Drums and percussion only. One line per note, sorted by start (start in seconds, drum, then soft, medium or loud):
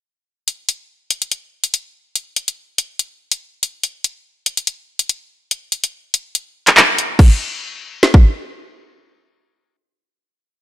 0.48 closed hi-hat medium
0.69 closed hi-hat medium
1.10 closed hi-hat medium
1.22 closed hi-hat medium
1.31 closed hi-hat medium
1.64 closed hi-hat medium
1.74 closed hi-hat medium
2.15 closed hi-hat medium
2.36 closed hi-hat medium
2.48 closed hi-hat medium
2.78 closed hi-hat medium
2.99 closed hi-hat medium
3.31 closed hi-hat medium
3.63 closed hi-hat medium
3.83 closed hi-hat medium
4.04 closed hi-hat medium
4.46 closed hi-hat medium
4.57 closed hi-hat medium
4.67 closed hi-hat medium
4.99 closed hi-hat medium
5.09 closed hi-hat medium
5.51 closed hi-hat medium
5.72 closed hi-hat medium
5.84 closed hi-hat medium
6.14 closed hi-hat medium
6.35 closed hi-hat medium
6.67 clap medium
6.67 closed hi-hat medium
6.77 clap loud
6.98 closed hi-hat medium
7.19 kick loud
7.19 crash medium
8.03 snare medium
8.14 kick medium